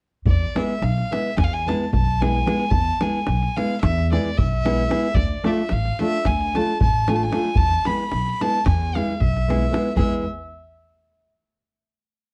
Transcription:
0.25 E2 D5, davul low
0.55 G#3 B3 E4 G#4 E5, davul high
0.69 davul high
0.82 B1 F5, davul high
0.98 davul high
1.11 G#3 B3 E4 G#4 E5, davul high
1.37 E2 G#5, davul high, davul low
1.44 F5
1.53 G#5, davul high
1.67 G#3 B3 E4 G#4 A5, davul high
1.93 B1 A5, davul low
2.21 G#3 B3 E4 G#4 G#5, davul high
2.46 G#3 B3 E4 G#4, davul high
2.59 davul high
2.70 E2 A5, davul low
3.01 G#3 B3 E4 G#4 G#5, davul high
3.26 B1, davul high
3.42 davul high
3.56 G#3 B3 E4 G#4 F5, davul high
3.81 E2 E5, davul high, davul low
3.98 davul high
4.12 G#3 B3 E4 G#4 D5, davul high
4.38 B1 E5, davul low
4.65 G#3 B3 E4 G#4, davul high
4.89 G#3 B3 E4 G#4, davul high
5.03 davul high
5.15 D2 D5, davul low
5.44 A3 D4 F4 A4 E5, davul high
5.58 davul high
5.69 A1 F5, davul high
5.85 davul high
5.99 A3 D4 F4 A4 E5, davul high
6.25 D2 G#5, davul high, davul low
6.41 davul high
6.55 A3 D4 F4 A4 A5, davul high
6.81 A1 A5, davul low
7.07 A3 D4 F4 A4 G#5, davul high
7.15 A5
7.23 G#5
7.31 A3 D4 F4 A4, davul high
7.44 davul high
7.55 E2 A5, davul low
7.71 davul high
7.85 G#3 B3 E4 G#4 B5, davul high
8.11 B1, davul high
8.26 davul high
8.40 G#3 B3 E4 G#4 A5, davul high
8.54 davul high
8.66 E2 G#5, davul high, davul low
8.81 davul high
8.95 G#3 B3 E4 G#4 F5, davul high
9.09 davul high
9.20 B1 E5, davul low
9.36 davul high
9.48 G#3 B3 E4 G#4, davul high
9.71 G#3 B3 E4 G#4, davul high
9.96 E2 G#3 B3 E4 G#4 E5, davul low

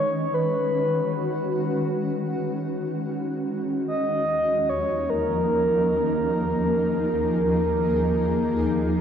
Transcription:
Already playing: D#3 G#3 C#4 C#5
0.34 B4
0.43 F#4
3.87 D#2 D#5
4.16 F3
4.20 D#4
4.68 A#3 C#5
5.10 A#4
6.00 G#4

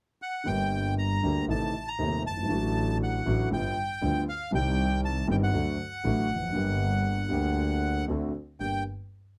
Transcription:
0.22 F#5
0.44 G1 G2 D3 G3 A#3 G5
0.48 G4
0.98 A#5
1.23 D2 D3 G3 A#3 G4
1.48 A1 A2 C3 D#3 A3 D#4 A5
1.88 A#5
1.99 D#1 D#2 C3 D#3 A3 D#4
2.25 G1 A5
2.31 F#1
2.37 G1
2.43 G#1
2.48 A1 A2 D3 F#3 A3
2.52 F#4
3.03 F#5
3.26 A1 A2 D3 F#3 A3 F#4
3.51 G1 G2 D3 G3 B3 F4 G5
4.02 D2 D3 G3 B3 F4
4.29 F5
4.51 C2 C3 D#3 G3 C4 G4 G5
5.05 A5
5.28 G1 G2 D#3 G3 C4 G4 G5
5.43 F#5
5.53 D2 D3 F#3 A3 F#4
6.04 A1 A2 D3 F#3 A3 F#4
6.29 F1
6.36 E2
6.42 F2
6.48 F#2
6.52 G1 G2 D3 G3 A#3 G4
7.29 D2 D3 G3 A#3
7.33 G4
8.08 D2 D3 A3 C4 F#4
8.60 G1 G2 A#3 D4 G4 G5

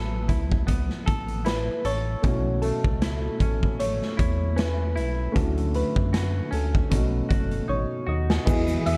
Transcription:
Already playing: A1 F#3 A3 B3 E4 G#4 A4 B4
0.28 C#2 E4, kick, closed hi-hat
0.52 kick
0.67 B3, kick, closed hi-hat
0.90 snare
1.06 A1 A4, kick, closed hi-hat
1.28 closed hi-hat
1.45 E4 B4, snare, closed hi-hat
1.85 A1 A4 C#5, closed hi-hat
2.22 B1 B2 A3 C#4 E4, kick, closed hi-hat
2.27 F#4
2.62 A3 A4, closed hi-hat
2.84 C#2, kick
3.02 E4, snare, closed hi-hat
3.40 A1 C#4, kick, closed hi-hat
3.63 kick
3.80 A3 C#5, closed hi-hat
4.02 snare
4.17 E2 E4 C#5, kick, closed hi-hat
4.56 C#4 B4, snare, closed hi-hat
4.96 B1 E4, closed hi-hat
5.32 D2 D3 A3 C#4 E4, kick
5.36 F#4 A4, closed hi-hat
5.58 closed hi-hat
5.74 A3 B4, closed hi-hat
5.96 F#2, kick
6.13 F#4, snare, closed hi-hat
6.51 D2 C#4 A4, closed hi-hat
6.75 kick
6.90 B1 B2 A3 C#4 D#4, kick, closed hi-hat
6.95 F#4
7.29 F#1 F#4, kick, closed hi-hat
7.51 closed hi-hat
7.68 A1 D#4 C#5
8.07 D#2 F#4 D#5
8.30 snare
8.45 E2 E3 B3 E4 F#4 G#4 B5 D#6, kick, crash, shaker
8.50 G#4
8.67 closed hi-hat, shaker
8.86 E2 B3 E5, closed hi-hat

